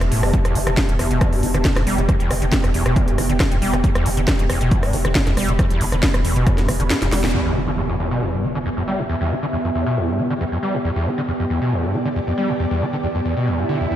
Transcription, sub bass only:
0.01 E1
0.12 E1
0.23 E1
0.45 E1
0.55 E1
0.67 E1
0.89 E1
0.99 E1
1.11 E1
1.33 E1
1.43 E1
1.54 E1
1.76 E1
1.87 E1
1.98 E1
2.20 E1
2.31 E1
2.42 E1
2.64 E1
2.74 E1
2.86 E1
3.08 E1
3.18 E1
3.30 E1
3.52 E1
3.62 E1
3.73 E1
3.95 E1
4.06 E1
4.17 E1
4.39 E1
4.50 E1
4.61 E1
4.83 E1
4.93 E1
5.05 E1
5.27 E1
5.37 E1
5.49 E1
5.70 E1
5.81 E1
5.92 E1
6.14 E1
6.25 E1
6.36 E1
6.58 E1
6.68 E1
6.80 E1
7.02 E1
7.12 E1
7.24 E1

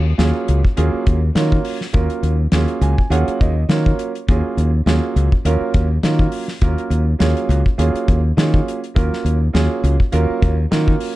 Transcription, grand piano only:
0.18 F#3 A#3 C#4 F4 G#4
0.77 F#3 A#3 C#4 F4 G#4
1.35 F#3 A#3 C#4 F4 A#4
1.93 F#3 A#3 C#4 F4 A#4
2.53 F#3 A#3 C#4 F4 G#4
2.82 G#5
3.10 F#3 A#3 C#4 F4 G#4 F#5
3.41 D#5
3.69 F#3 A#3 C#4 F4 A#4 C#5
4.28 F#3 A#3 C#4 F4 G#4
4.86 F#3 A#3 C#4 F4 G#4
5.45 F#3 A#3 C#4 F4 A#4
6.03 F#3 A#3 C#4 F4 A#4
6.62 F#3 A#3 C#4 F4 A#4
7.19 F#3 A#3 C#4 F4 G#4
7.78 F#3 A#3 C#4 F4 G#4
8.37 F#3 A#3 C#4 F4 G#4
8.95 F#3 A#3 C#4 F4 A#4
9.53 F#3 A#3 C#4 F4 G#4
10.12 F#3 A#3 C#4 F4 A#4
10.71 F#3 A#3 C#4 F4 A#4

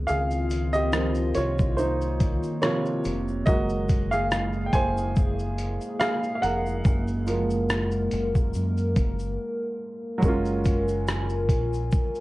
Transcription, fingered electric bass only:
0.10 C#2
1.37 C2
3.06 F1
3.48 F#1
4.74 F#1
6.44 F1
6.86 F#1
8.13 F#1
8.55 F#2
8.97 F#1
10.23 F#1
11.50 A#1

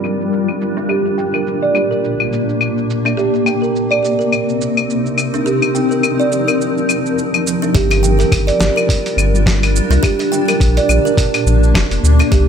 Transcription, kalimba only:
0.77 D4
0.89 G4
1.06 G4
1.18 G5
1.34 A#4
1.62 D5
1.75 G4
1.91 A#4
3.05 D4
3.17 G4
3.34 G4
3.46 G5
3.62 A#4
3.91 D5
4.03 G4
4.19 A#4
5.34 D4
5.46 G4
5.63 G4
5.75 G5
5.91 A#4
6.20 D5
6.32 G4
6.48 A#4
7.62 D4
7.75 G4
7.91 G4
8.03 G5
8.19 A#4
8.47 D5
8.60 G4
8.76 A#4
9.91 D4
10.03 G4
10.19 G4
10.32 G5
10.48 A#4
10.77 D5
10.89 G4
11.05 A#4
12.19 D4
12.32 G4

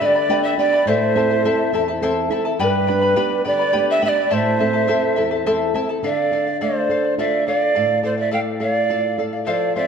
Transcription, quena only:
0.02 D5 E5
0.44 E5
0.58 D5
0.88 C5
2.61 B4
3.47 D5
3.91 E5
4.05 D5 E5
4.33 C5
6.05 D5
6.62 C5
7.19 D5
7.48 D5
8.05 C5
8.19 D5
8.33 F5
8.63 D5
9.47 D5 E5
9.77 D5

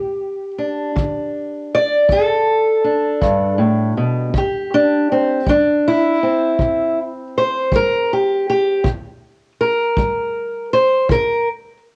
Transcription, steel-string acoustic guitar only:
Already playing: G2 G4
0.58 D4
0.96 D3
1.75 D5
2.09 G2 A4
2.84 D4
3.21 G2
3.58 A2
3.62 G4
3.97 B2
4.34 C3 G4
4.74 D4
5.12 C4
5.47 G3 D4
5.88 E4
6.23 C4
6.59 C3
7.38 C5
7.72 G3 A#4
8.13 G4
8.50 G4
8.84 C3
9.61 A#4
9.98 G3
10.73 C5
11.09 C3 A#4

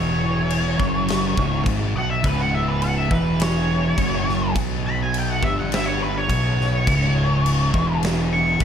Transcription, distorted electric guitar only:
Already playing: E2
0.79 F#2
1.38 C#2
1.66 G#2
1.95 B2
2.23 C#2
3.10 E2
3.98 F#2
4.56 B2
5.42 G2
6.29 B2
6.87 C#2
7.74 E2
8.60 F#2

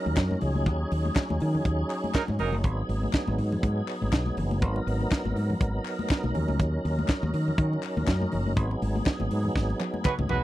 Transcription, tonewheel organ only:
Already playing: F#3 C#4 D#4 A#4
0.41 G#4
2.64 B3 G#4
4.62 A#4
6.34 C#4
8.57 B3 G#4

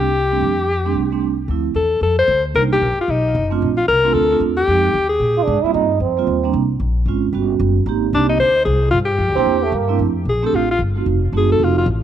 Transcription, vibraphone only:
0.30 G3 A3 C4 D4
0.84 G3 A3 C4 D4
1.11 G3 A3 C4 D4
1.49 F3 A3 C4 E4
2.55 G3 A#3 D4 D#4
3.50 A3 C4 D4 F4
4.04 A3 C4 D4 F4
4.31 A3 C4 D4 F4
4.68 G#3 C4 D#4 G4
5.64 G3 A#3 C4 F4
6.17 G3 A#3 C4 F4
6.43 G3 A#3 C4 D4
7.08 G#3 C4 C#4 F4
7.33 G3 B3 C#4 F#4
7.87 A#3 C4 D#4 G4
8.14 A#3 C4 D#4 G4
9.36 A#3 D4 E4 G4
9.88 A3 C4 D4 E4
10.43 A3 C4 D4 G4
10.95 A3 C4 D#4 F#4
11.33 A3 C4 D#4 F#4

